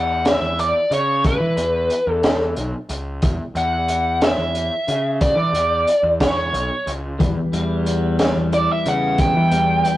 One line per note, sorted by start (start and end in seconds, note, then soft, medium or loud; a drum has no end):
0.00 0.37 E2 medium
0.00 0.27 F#5 medium
0.25 0.60 E5 medium
0.25 snare loud
0.25 closed hi-hat medium
0.41 0.72 E2 medium
0.59 0.90 D5 medium
0.59 closed hi-hat medium
0.91 1.37 C#3 medium
0.91 1.23 C#5 medium
0.91 closed hi-hat soft
1.24 2.13 B4 medium
1.24 kick loud
1.24 closed hi-hat medium
1.40 1.56 E3 medium
1.57 1.88 E2 medium
1.57 closed hi-hat medium
1.90 closed hi-hat medium
2.07 2.53 E2 medium
2.13 2.54 A4 medium
2.23 snare loud
2.23 closed hi-hat medium
2.56 2.72 B1 medium
2.56 closed hi-hat soft
2.89 3.20 C#2 medium
2.89 closed hi-hat medium
3.22 3.38 E2 medium
3.22 kick loud
3.22 closed hi-hat medium
3.55 4.34 E2 medium
3.55 4.25 F#5 medium
3.55 closed hi-hat soft
3.88 closed hi-hat medium
4.21 5.21 E5 medium
4.21 snare loud
4.21 closed hi-hat medium
4.38 4.69 E2 medium
4.55 closed hi-hat medium
4.88 5.34 C#3 medium
4.88 closed hi-hat medium
5.21 6.17 D5 medium
5.21 kick loud
5.21 closed hi-hat medium
5.37 5.52 E3 medium
5.53 5.84 E2 medium
5.53 closed hi-hat medium
5.87 closed hi-hat medium
6.03 6.50 E2 medium
6.20 6.91 C#5 medium
6.20 kick medium
6.20 snare loud
6.20 closed hi-hat medium
6.53 6.69 B1 medium
6.53 closed hi-hat medium
6.87 7.18 C#2 medium
6.87 closed hi-hat medium
7.18 9.18 E2 medium
7.18 7.35 E2 medium
7.18 9.97 E3 medium
7.18 9.97 G3 medium
7.18 9.97 B3 medium
7.18 9.97 G4 medium
7.18 9.97 B4 medium
7.18 kick loud
7.18 closed hi-hat medium
7.53 8.32 E2 medium
7.53 8.19 G3 medium
7.53 closed hi-hat soft
7.86 8.85 B3 medium
7.86 closed hi-hat medium
8.19 9.52 G3 medium
8.19 snare loud
8.19 closed hi-hat medium
8.36 8.67 E2 medium
8.52 9.97 E4 medium
8.52 8.70 D5 medium
8.52 closed hi-hat medium
8.72 8.88 E5 medium
8.86 9.32 C#3 medium
8.86 9.83 B3 medium
8.86 9.21 F#5 medium
8.86 closed hi-hat medium
9.18 9.97 E2 medium
9.18 9.97 G5 medium
9.18 kick loud
9.18 closed hi-hat medium
9.37 9.50 E3 medium
9.51 9.82 E2 medium
9.51 9.97 G3 medium
9.51 closed hi-hat medium
9.84 9.97 B3 medium
9.84 closed hi-hat medium